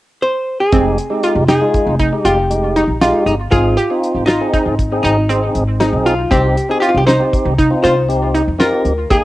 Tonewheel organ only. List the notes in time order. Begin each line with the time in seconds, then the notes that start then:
0.73 G#3 D#4 G4
1.10 G#3 D#4 G4
1.61 G#3 D#4 F4
2.12 G#3 D#4 G4
2.50 G#3 D#4 G4
3.01 G#3 D#4 G4
3.52 C4 D#4 G#4
3.90 C4 D#4 F4
4.41 C4 D#4 G#4
4.92 C4 D#4 G#4
5.30 C4 D#4 G#4
5.80 C4 D#4 G#4
6.31 C4 D#4 G4
6.69 C4 D#4 G4
7.20 C4 D#4 G4
7.70 C4 D#4 F4
8.08 C4 D#4 G4
8.59 C4 D#4 G4
9.10 A#3 D#4 G#4